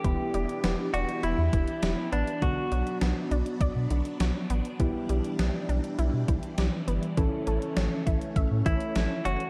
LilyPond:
<<
  \new Staff \with { instrumentName = "Clean electric guitar" } { \time 4/4 \key e \dorian \tempo 4 = 101 g'4. fis'8 e'4. d'8 | fis'4 r2. | r1 | r2 r8 e'4 fis'8 | }
  \new Staff \with { instrumentName = "Synth keys" } { \time 4/4 \key e \dorian <b e' g'>1 | <b d' fis'>1 | <b e' g'>1 | <cis' e' a'>1 | }
  \new Staff \with { instrumentName = "String machine" } { \time 4/4 \key e \dorian << { <e d' g'>1 | b1 | g1 | <a cis'>1 | } \\ { b1 | fis1 | e1~ | e1 | } >> }
  \new Staff \with { instrumentName = "Synth arpeggio sound" } { \time 4/4 \key e \dorian e8 g8 b8 d'8 e'8 e8 g8 b8 | d8 fis8 b8 d'8 d''8 d8 fis8 b8 | e8 g8 b8 d'8 e'8 e8 g8 b8 | e8 a8 cis'8 e'8 e''8 e8 a8 cis'8 | }
  \new Staff \with { instrumentName = "Analog synth bass" } { \clef bass \time 4/4 \key e \dorian e,,16 r16 e,,16 r16 e,,16 r16 e,,16 r16 e,,16 e,16 e,,16 r16 e,,16 r16 a,,16 r16 | b,,16 r16 b,,16 r16 b,,16 r16 b,,16 r16 b,,16 b,16 b,,16 r16 b,,16 r16 a,,16 r16 | b,,16 r16 b,,16 r16 b,,16 r16 b,,16 r16 b,,16 b,16 b,,16 r16 b,,16 r16 g,,16 r16 | a,,16 r16 a,,16 r16 a,,16 r16 a,,16 r16 a,,16 a,16 a,,16 r16 a,,16 r16 fis,,16 r16 | }
  \new DrumStaff \with { instrumentName = "Drums" } \drummode { \time 4/4 <hh bd>8 hh16 hh16 <hh sn>8 hh16 hh16 hh8 <hh bd>16 hh16 <hh sn>8 hh16 hh16 | <hh bd>8 hh16 hh16 <hh sn>8 hh16 hh16 <hh bd>8 hh16 hh16 <hh sn>8 hh16 hh16 | <hh bd>8 hh16 hh16 <hh sn>8 hh16 hh16 hh8 <hh bd>16 hh16 <hh sn>8 hh16 hh16 | <hh bd>8 hh16 hh16 <hh sn>8 <hh bd>16 hh16 <hh bd>8 <hh bd>16 hh16 <hh sn>8 hh16 hh16 | }
>>